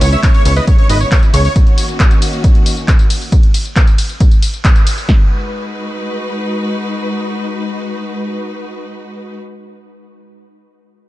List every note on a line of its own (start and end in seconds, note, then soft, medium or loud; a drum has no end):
0.00 0.17 C#2 loud
0.00 1.52 C#3 medium
0.00 1.52 G#3 medium
0.00 1.52 B3 medium
0.00 1.52 E4 medium
0.00 0.09 C#5 medium
0.00 open hi-hat loud
0.00 ride medium
0.00 tambourine medium
0.12 0.20 C#5 medium
0.12 0.20 E5 loud
0.12 closed hi-hat soft
0.12 tambourine soft
0.23 0.31 C#5 medium
0.23 kick loud
0.23 clap loud
0.23 closed hi-hat loud
0.23 tambourine soft
0.34 0.42 C#5 medium
0.34 closed hi-hat soft
0.34 tambourine soft
0.45 0.61 C#2 loud
0.45 0.54 C#5 medium
0.45 open hi-hat medium
0.45 ride medium
0.45 tambourine medium
0.56 0.65 B4 medium
0.56 0.65 D#5 loud
0.56 closed hi-hat soft
0.56 tambourine soft
0.67 0.76 C#5 medium
0.67 kick loud
0.67 closed hi-hat medium
0.67 tambourine soft
0.79 0.87 C#5 medium
0.79 closed hi-hat soft
0.90 1.05 G#1 medium
0.90 0.98 B4 medium
0.90 0.98 D#5 loud
0.90 open hi-hat loud
0.90 ride medium
0.90 tambourine medium
1.01 1.09 C#5 medium
1.01 closed hi-hat soft
1.01 tambourine soft
1.12 1.20 C#5 medium
1.12 kick loud
1.12 clap loud
1.12 closed hi-hat medium
1.12 tambourine soft
1.23 closed hi-hat soft
1.23 tambourine soft
1.34 1.49 C#2 loud
1.34 1.42 C#5 medium
1.34 open hi-hat medium
1.34 ride medium
1.34 tambourine medium
1.45 1.53 C#5 medium
1.45 tambourine soft
1.56 3.31 D#3 medium
1.56 3.31 A#3 medium
1.56 3.31 C#4 medium
1.56 3.31 F#4 medium
1.56 kick loud
1.56 closed hi-hat loud
1.56 tambourine soft
1.67 closed hi-hat soft
1.78 open hi-hat loud
1.78 ride medium
1.78 tambourine medium
1.89 tambourine soft
2.00 kick loud
2.00 clap loud
2.00 closed hi-hat loud
2.00 tambourine soft
2.11 closed hi-hat soft
2.11 tambourine soft
2.22 open hi-hat medium
2.22 ride medium
2.22 tambourine medium
2.33 closed hi-hat soft
2.33 tambourine soft
2.44 kick loud
2.44 closed hi-hat medium
2.44 tambourine soft
2.55 closed hi-hat soft
2.66 open hi-hat loud
2.66 ride medium
2.66 tambourine medium
2.77 closed hi-hat soft
2.77 tambourine soft
2.88 kick loud
2.88 clap loud
2.88 closed hi-hat loud
2.88 tambourine soft
2.99 closed hi-hat soft
2.99 tambourine soft
3.10 open hi-hat medium
3.10 ride medium
3.10 tambourine medium
3.21 tambourine soft
3.32 kick loud
3.32 closed hi-hat loud
3.32 tambourine soft
3.43 closed hi-hat soft
3.54 open hi-hat loud
3.54 ride medium
3.54 tambourine medium
3.65 closed hi-hat soft
3.65 tambourine soft
3.76 kick loud
3.76 clap loud
3.76 closed hi-hat loud
3.76 tambourine soft
3.87 closed hi-hat soft
3.87 tambourine soft
3.98 open hi-hat medium
3.98 ride medium
3.98 tambourine medium
4.09 closed hi-hat soft
4.09 tambourine soft
4.20 kick loud
4.20 closed hi-hat loud
4.20 tambourine soft
4.31 closed hi-hat soft
4.31 tambourine soft
4.42 open hi-hat loud
4.42 ride medium
4.42 tambourine medium
4.54 closed hi-hat soft
4.54 tambourine soft
4.65 kick loud
4.65 clap loud
4.65 closed hi-hat loud
4.65 tambourine soft
4.76 closed hi-hat soft
4.76 tambourine soft
4.87 open hi-hat medium
4.87 ride medium
4.87 tambourine medium
4.98 tambourine soft
5.09 9.38 G#3 medium
5.09 9.38 D#4 medium
5.09 9.38 F#4 medium
5.09 9.38 B4 medium
5.09 kick loud
5.09 snare loud